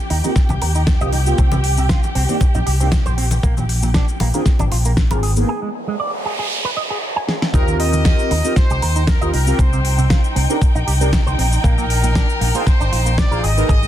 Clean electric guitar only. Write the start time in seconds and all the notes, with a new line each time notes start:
0.10 D#4
0.24 D#4
0.50 G4
0.62 A#4
0.75 D#4
1.01 D#5
1.13 D#4
1.39 C4
1.52 C3
1.78 C3
1.90 F4
2.15 C4
2.29 C4
2.55 D#4
2.66 G4
2.80 C4
3.06 C5
3.18 C4
3.43 A#3
3.57 A#2
3.83 A#2
3.95 D4
4.21 A#3
4.34 A#3
4.60 D4
4.72 F4
4.85 A#3
5.11 A#4
5.23 G#4
5.48 G#4
5.62 G#3
5.88 G#3
6.00 D5
6.25 G#4
6.39 G#4
6.65 B4
6.77 D#5
6.90 G#4
7.16 G#5
7.28 G#4
7.54 D#4
7.68 D#3
7.93 D#3
8.05 G4
8.31 D#4
8.45 D#4
8.71 G4
8.82 A#4
8.96 D#4
9.21 D#5
9.33 D#4
9.59 C4
9.73 C3
9.98 C3
10.10 F4
10.36 C4
10.50 C4
10.75 D#4
10.87 G4
11.01 C4
11.26 C5
11.38 C4
11.64 A#3
11.78 A#2
12.03 A#2
12.15 D4
12.41 A#3
12.54 A#3
12.80 D4
12.92 F4
13.06 A#3
13.31 A#4
13.43 G#4
13.69 G#4
13.83 G#3